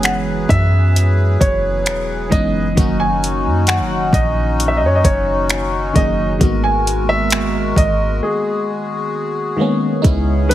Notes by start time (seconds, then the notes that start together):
Already playing: F#1 E3 F#3 G#3 B3 C#4 F#4 G#4 B4
0.03 F#5, finger snap, closed hi-hat
0.49 F#2 E5, kick, closed hi-hat
0.96 closed hi-hat
1.40 F#1 C#5, kick, closed hi-hat
1.86 E1, finger snap, closed hi-hat
2.30 F#1 E3 G#3 B3 C#4 D#5, kick, closed hi-hat
2.34 D#4
2.75 F#1 D#3 F#3 A#3 C#4 D#4 F#4, kick, closed hi-hat
2.80 F#4
3.00 G#5
3.24 closed hi-hat
3.46 F#2
3.67 F#5, finger snap, closed hi-hat
3.80 F#1
4.13 A#1 D#5, kick, closed hi-hat
4.60 closed hi-hat
4.68 E5
4.77 D#5
4.82 F#2
4.86 C#5
4.95 D#5
5.04 F#1 C#5, kick, closed hi-hat
5.50 finger snap, closed hi-hat
5.93 F#1 D#3 F#3 A#3 C#4 D#5, kick, closed hi-hat
5.98 G#4
6.39 G#1 D#3 G#3 A#3 B3 A#4, kick, closed hi-hat
6.43 F#4
6.64 G#5
6.87 closed hi-hat
7.09 E5
7.30 finger snap, closed hi-hat
7.76 G#1 D#5, kick, closed hi-hat
8.23 G#4
9.57 D#3 G#3 A#3 B3
9.61 C#4
10.02 C#2 C#3 G#3 B3 C#4 D#4 G#4, kick, closed hi-hat
10.06 E4
10.48 D#3 G#3 B3 C#4 B4, closed hi-hat